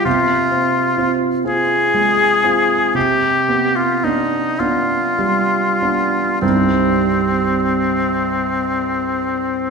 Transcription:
X:1
M:6/8
L:1/16
Q:3/8=36
K:Cm
V:1 name="Oboe"
F4- F z A6 | G3 F E2 F6 | C12 |]
V:2 name="Grand piano"
C,2 C2 [CF]2 [CF]2 A,2 [CF]2 | C,2 =B,2 [B,D]2 [B,D]2 G,2 [B,D]2 | [C,,G,,G,CEG]12 |]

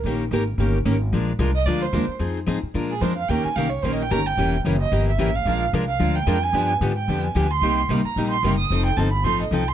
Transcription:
X:1
M:4/4
L:1/8
Q:"Swing" 1/4=222
K:Bbmix
V:1 name="Violin"
z8 | z3 e d c2 z | z4 z A c f | g a f _d (3c e g b g- |
g z2 e2 =e2 f- | f z2 f2 g2 a- | a z2 g2 a2 c'- | c' z2 b2 c'2 e'- |
e' g =a _c' =c' e g c' |]
V:2 name="Steel-string acoustic guitar"
[E,B,_DGB] z [E,B,DGB] z [E,B,DGB] z [E,B,DGB] z | [F,A,DFB] z [F,A,DFB] z [F,A,DFB] z [F,A,DFB] z | [F,CEA] z [F,CEA] z [F,A,DFB] z [F,A,DFB] z | [E,B,_DGB] z [E,B,DGB] z [E,B,DGB] z [E,B,DGB] z |
[=E,B,^CG] z [E,B,CG] z [E,B,CG] z [E,B,CG] z | [F,A,DFB] z [F,A,DFB] z [F,A,DFB] z [F,A,DFB] z | [D,F,=B,DG] z [D,F,B,DG] z [D,F,B,DG] z [D,F,B,DG] z | [C,G,B,EG] z [C,G,B,EG] z [C,G,B,EG] z [C,G,B,EG] z |
[F,CE=A] z [F,CEA] z [F,CEA] z [F,CEA] z |]
V:3 name="Steel-string acoustic guitar"
[E,B,_DGB] z [E,B,DGB] z [E,B,DGB] z [E,B,DGB] z | [F,A,DFB] z [F,A,DFB] z [F,A,DFB] z [F,A,DFB] z | [F,CEA] z [F,CEA] z [F,A,DFB] z [F,A,DFB] z | [E,B,_DGB] z [E,B,DGB] z [E,B,DGB] z [E,B,DGB] z |
[=E,G,^C=EB] z [E,G,CEB] z [E,G,CEB] z [E,G,CEB] z | [F,A,DFB] z [F,A,DFB] z [F,A,DFB] z [F,A,DFB] z | [D,F,=B,DG] z [D,F,B,DG] z [D,F,B,DG] z [D,F,B,DG] z | [C,G,B,EG] z [C,G,B,EG] z [C,G,B,EG] z [C,G,B,EG] z |
[F,CE=A] z [F,CEA] z [F,CEA] z [F,CEA] z |]
V:4 name="Upright bass" clef=bass
B,,,2 A,,,2 G,,,2 A,,,2 | B,,,2 C,,2 D,,2 E,, z | F,,2 A,, z B,,2 F,,2 | E,, z C,,2 B,,,2 G,,,2 |
=E,,,2 _G,,,2 =G,,,2 =A,,,2 | B,,,2 C,,2 D,,2 F,,2 | G,,2 A,,2 F,,2 D,,2 | C,,2 C,, z B,,,2 _G,,,2 |
F,,,2 G,,,2 =A,,,2 C,,2 |]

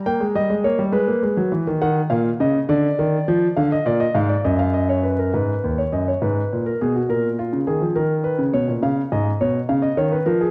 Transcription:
X:1
M:6/8
L:1/16
Q:3/8=69
K:G#m
V:1 name="Grand piano"
=g2 d2 c2 B6 | f2 ^e2 d2 =d6 | ^e d =d ^d e =d ^d e d c B A | B3 c d c B3 A G F |
A2 ^E2 G2 A2 B2 c2 | ^e2 d2 c2 e d c B A G |]
V:2 name="Grand piano" clef=bass
A, G, =G, ^G, A, =G, ^G, A, G, F, E, D, | D,2 A,,2 C,2 =D,2 ^D,2 =F,2 | =D,2 A,,2 G,,2 F,,6 | G,,2 D,,2 F,,2 G,,2 A,,2 B,,2 |
A,,3 C, D, ^E, D,3 C, B,, A,, | C,2 G,,2 B,,2 C,2 D,2 ^E,2 |]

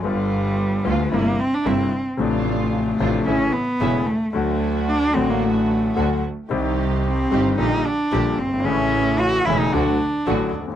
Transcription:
X:1
M:4/4
L:1/16
Q:1/4=112
K:Gm
V:1 name="String section"
[G,=B,F]6 [G,B,F]2 [_B,C=E]2 z2 [B,CE]2 z2 | [A,DF]6 [A,DF]2 [A,^C=E]2 z2 [A,CE]2 z2 | [A,D^F]6 [A,DF]6 [A,DF]2 z2 | [CEG]6 [CEG]2 [B,DG]2 z2 [B,DG]2 z2 |
[A,^C=E]6 [A,CE]2 [A,D^F]2 z2 [A,DF]2 z2 |]
V:2 name="Cello"
G,6 A,2 B,2 C D C3 z | z4 A,4 ^C2 =B,4 A,2 | A,4 D2 C B, A,6 z2 | z4 C4 E2 D4 C2 |
^C4 ^F2 =E _E D6 z2 |]
V:3 name="Grand piano" clef=bass
[G,,,G,,D,G,=B,F]6 [D,,D,G,B,F]2 [G,,,G,,C,G,_B,=E]2 z2 [G,,,G,,C,G,B,E]2 z2 | [A,,,A,,C,F,A,D]6 [A,,,A,,C,F,A,D]2 [A,,,A,,^C,=E,A,=E]2 z2 [=E,,,=E,,C,E,A,E]2 z2 | [D,,D,^F,A,^F]6 [A,,,A,,D,F,A,F]6 [D,,D,F,A,F]2 z2 | [C,,C,E,G,CG]6 [G,,,G,,E,G,CG]2 [B,,,B,,D,G,B,G]2 z2 [B,,,B,,D,G,B,G]2 z/2 ^F,,,/2 G,,,/2 _A,,,/2 |
[A,,,A,,^C,=E,A,=E]6 [=E,,,=E,,C,E,A,E]2 [D,,D,^F,A,^F]2 z2 [A,,,A,,D,F,A,F]2 z/2 D,,/2 _E,,/2 z/2 |]
V:4 name="Double bass" clef=bass
G,,,6 D,,2 G,,,2 z2 G,,,2 z2 | A,,,6 A,,,2 A,,,2 z2 =E,,,2 z2 | D,,6 A,,,6 D,,2 z2 | C,,6 G,,,2 B,,,2 z2 B,,,2 G,,,2 |
A,,,6 =E,,,2 D,,2 z2 A,,,2 _E,,2 |]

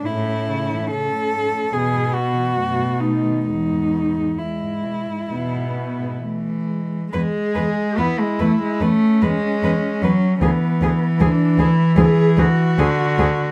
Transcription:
X:1
M:4/4
L:1/16
Q:1/4=72
K:E
V:1 name="Cello"
E4 A4 G2 F4 D2 | D4 E8 z4 | B2 B2 B2 B2 B2 B2 B2 B2 | G2 G2 G2 G2 G2 G2 G2 G2 |]
V:2 name="Cello"
C8 B,4 A,4 | G,4 G,4 B,4 A,2 G,2 | G4 E4 C8 | B,4 =D2 E2 G2 F6 |]
V:3 name="Cello" clef=bass
G,, A,, C, E, C, A,, G,, A,, E,, G,, B,, E, F,, A,, B,, D, | E,, G,, B,, G,, E,, G,, B,, G,, E,, G,, B,, G,, E,4 | G,4 B, G, A, G, A,2 G,4 F,2 | E,12 =D,4 |]
V:4 name="Cello" clef=bass
A,,4 z4 B,,4 B,,4 | E,,4 z4 B,,4 z4 | E,,2 E,,2 E,,2 E,,2 E,,2 E,,2 E,,2 E,,2 | =D,,2 D,,2 D,,2 D,,2 D,,2 D,,2 D,,2 D,,2 |]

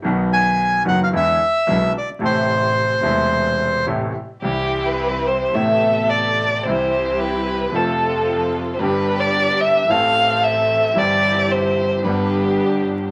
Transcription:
X:1
M:4/4
L:1/16
Q:1/4=110
K:Am
V:1 name="Bandoneon"
z2 ^g4 ^f =f e6 d2 | c12 z4 | [K:C] z16 | z16 |
z16 | z16 |]
V:2 name="Violin"
z16 | z16 | [K:C] G3 B3 c2 e4 d4 | c4 B4 A4 z3 z/2 c/2 |
B3 d3 e2 f4 e4 | d4 c4 B4 z4 |]
V:3 name="String section"
z16 | z16 | [K:C] [CEG]8 [B,A]8 | [CEG]8 [CFA]8 |
[B,DG]8 [E,CA]8 | [CEG]8 [B,DG]8 |]
V:4 name="Grand piano" clef=bass
[B,,,B,,^D,^F,B,^F]6 [^F,,,^F,,D,F,B,F]2 [E,,=D,E,^G,B,E]2 z2 [B,,,B,,D,G,B,E]2 z2 | [A,,,A,,C,E,A,E]6 [E,,,E,,C,E,A,E]6 [A,,,A,,C,E,A,E]2 z2 | [K:C] [C,,C,E,G,E]8 [A,,,A,,C,A,B,E]8 | [C,,C,E,G,E]8 [F,,C,F,A,F]8 |
[G,,,G,,D,G,B,G]8 [A,,,A,,E,A,CA]8 | [G,,,G,,E,G,CG]8 [G,,,G,,D,G,B,G]8 |]
V:5 name="Double bass" clef=bass
B,,,6 ^F,,,2 E,,2 z2 B,,,2 z2 | A,,,6 E,,,6 A,,,2 z2 | [K:C] C,,8 A,,,8 | C,,8 F,,8 |
G,,,8 A,,,8 | G,,,8 G,,,8 |]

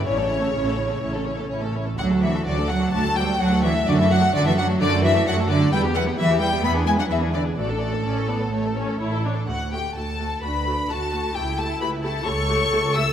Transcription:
X:1
M:4/4
L:1/16
Q:1/4=128
K:D
V:1 name="Violin section"
c12 z4 | f2 e2 d2 f2 a2 g2 f2 e2 | d e f2 d e f2 d2 e2 f2 d2 | g2 f2 e2 g2 b2 ^g f e2 d2 |
A12 z4 | F2 G2 A4 B4 A4 | G2 A2 B2 A2 c6 e2 |]
V:2 name="Violin section"
c A c A c A c A c A c A c A c A | F A F A F A F A F A F A F A F A | F A F A F A F A F A F A F A F A | B G B G B G B G B ^G B G B G B G |
d A d A d A d A c A c A c A c A | f2 g2 a4 b4 a4 | g2 a2 b2 a2 c'6 e'2 |]
V:3 name="Viola section"
[CE] [A,C] [CE] [A,C] [CE] [A,C] [CE] [A,C] [CE] [A,C] [CE] [A,C] [CE] [A,C] [CE] [A,C] | [F,D] [A,F] [F,D] [A,F] [F,D] [A,F] [F,D] [A,F] [F,D] [A,F] [F,D] [A,F] [F,D] [A,F] [F,D] [A,F] | [F,D] [A,F] [F,D] [A,F] [F,D] [A,F] [F,D] [A,F] [F,D] [A,F] [F,D] [A,F] [F,D] [A,F] [F,D] [A,F] | [G,E] [B,G] [G,E] [B,G] [G,E] [B,G] [G,E] [B,G] [B,E] D [B,E] D [B,E] D [B,E] D |
[A,F] [DA] [A,F] [DA] C2 B,2 A,2 C2 E2 D2 | [A,F]2 [A,F]2 [A,F]2 [A,F]2 [A,F]2 [A,F]2 [A,F]2 [A,F]2 | [A,G]2 [A,G]2 [A,G]2 [A,G]2 [A,G]2 [A,G]2 [A,G]2 [A,G]2 |]
V:4 name="Cello section" clef=bass
C,12 z4 | F,2 E,2 D,2 F,2 A,2 G,2 F,2 E,2 | D, E, F,2 D, E, F,2 D,2 E,2 F,2 D,2 | G,2 F,2 E,2 G,2 B,2 ^G, F, E,2 D,2 |
A,,12 z4 | z8 D4 F4 | E8 A8 |]
V:5 name="Double bass section" clef=bass
A,,,4 A,,,4 A,,,4 A,,,4 | D,,4 D,,4 D,,4 D,,4 | F,,4 F,,4 F,,4 F,,4 | E,,4 E,,4 E,,4 E,,4 |
A,,,4 A,,,4 A,,,4 A,,,4 | D,,4 D,,4 D,,4 D,,4 | C,,4 C,,4 C,,4 C,,4 |]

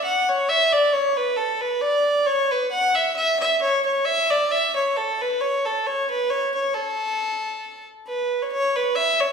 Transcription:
X:1
M:3/4
L:1/16
Q:"Swing" 1/4=134
K:A
V:1 name="Fiddle"
f2 c2 e2 d2 c2 B2 | A2 B2 d4 c2 B2 | f2 e2 e2 e2 c2 c2 | e2 d2 e2 c2 A2 B2 |
c2 A2 c2 B2 c2 c2 | A8- A2 z2 | B3 c c2 B2 e2 c2 |]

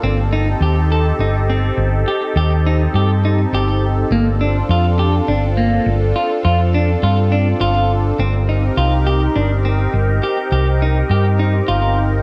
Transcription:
X:1
M:7/4
L:1/8
Q:1/4=103
K:Bb
V:1 name="Analog synth pad"
[CEGA]12- [CEGA]2 | [CDFA]12- [CDFA]2 | [CEGB]12- [CEGB]2 |]
V:2 name="Clean electric guitar"
C E G A E C2 G G E G E G2 | B, D F G D B,2 F F D F D F2 | C E F G D C2 G G E G E F2 |]
V:3 name="Fingered electric bass" clef=bass
G,,,2 E,,2 G,,,2 G,,, z E,,2 G,,2 G,,,2 | G,,,2 F,,2 G,,,2 G,,, z F,,2 G,,2 G,,,2 | G,,,2 C,,2 G,,,2 G,,, z C,,2 G,,2 G,,,2 |]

